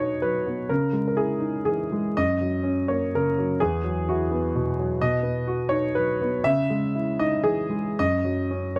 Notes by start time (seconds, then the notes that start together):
Already playing: B2 B3 D#4 F#4 C#5 D#5
0.22 F#3 B4
0.46 B3
0.69 C#3 A#4
0.93 G#3
1.08 A#4
1.16 E4 G#4
1.40 D#4
1.65 E3 G#4
1.92 G#3
2.17 F#2 D#5
2.41 F#3
2.63 C#4
2.88 A#3 C#5
3.15 C#3 A#4
3.38 F#3
3.60 E2 G#4
3.84 F#3
4.09 E4 F#4
4.31 B3
4.55 B2
4.79 F#3
5.01 B2 D#5
5.23 B3
5.48 F#4
5.69 D#4 C#5
5.95 F#3 B4
6.21 B3
6.44 C#3 E5
6.70 G#3
6.95 E4
7.19 D#4 D#5
7.44 E3 G#4
7.70 G#3
7.99 F#2 D#5
8.25 F#3
8.51 C#4
8.76 A#3 C#5